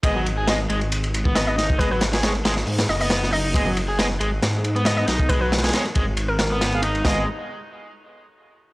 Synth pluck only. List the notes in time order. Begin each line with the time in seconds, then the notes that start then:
1.35 D#5
1.47 D#5
1.79 B4
1.91 B4
2.89 D#5
3.01 D#5
3.33 D#5
4.86 D#5
4.97 D#5
5.29 B4
5.41 B4
6.28 A#4
6.39 A#4